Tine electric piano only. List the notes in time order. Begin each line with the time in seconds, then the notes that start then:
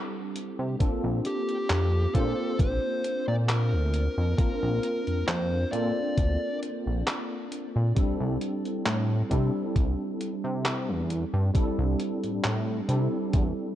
Already playing: G3 C4 D4 E4 A4
0.79 A#3 C4 D4 F4 A4
2.13 A#3 C4 D4 F4 C5
4.37 A#3 C4 D4 F4 A#4
5.72 A#3 C4 D4 F4 A4
7.95 G3 C4 D4 E4 A4
9.29 G3 C4 D4 E4 A4
11.53 G3 C4 D4 E4 A4
12.88 G3 C4 D4 E4 A4